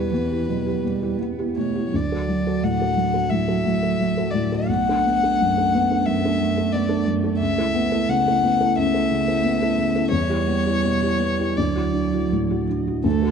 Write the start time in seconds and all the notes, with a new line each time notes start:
Already playing: E2 B2 G3 B3 E4 G4 B4
0.11 E3 B3
0.31 E4 G4
0.48 B2 F#3
0.66 E4 G4
0.84 B2 G3
1.02 E4 G4
1.20 B3
1.39 E4 G4
1.57 B2 A3 C#5
1.75 E4 G4
1.93 D2 F#3 D5
2.11 F#4 A4
2.28 F#3
2.46 F#4 A4
2.63 A2 F#5
2.80 F#4 A4
2.97 F#3
3.14 F#4 A4
3.30 A2 E5
3.48 F#4 A4
3.65 A2
3.82 F#4 A4
3.99 F#3
4.17 F#4 A4
4.31 A2 D5
4.52 F#4 A4
4.68 B1 A3 F#5
4.89 D4 A4
5.05 B3
5.23 D4 A4
5.41 F#2
5.57 D4 A4
5.74 B3
5.91 D4 A4
6.05 F#2 E5
6.25 D4 A4
6.40 F#2
6.57 D4 A4
6.72 B3 D5
6.88 D4 A4
7.06 F#2
7.24 D4 A4
7.39 C#2 E5
7.58 E4 A4
7.75 B3
7.92 E4 A4
8.09 C#3 F#5
8.27 E4 A4
8.43 B3
8.61 E4 A4
8.78 C#2 E5
8.94 E4 A4
9.12 C#3
9.27 E4 A4
9.44 B3
9.61 E4 A4
9.78 C#3
9.95 E4 A4
10.11 E2 G3 C#5
10.29 E4 G4
10.47 B3
10.66 E4 G4
10.84 B2
11.02 E4 G4
11.19 B3
11.39 E4 G4
11.57 D2 F#3 D5
11.75 E4 F#4
11.93 D4
12.13 E4 F#4
12.32 A2
12.50 E4 F#4
12.70 D4
12.87 E4 F#4
13.04 D2 A3 A4
13.21 F#4 A4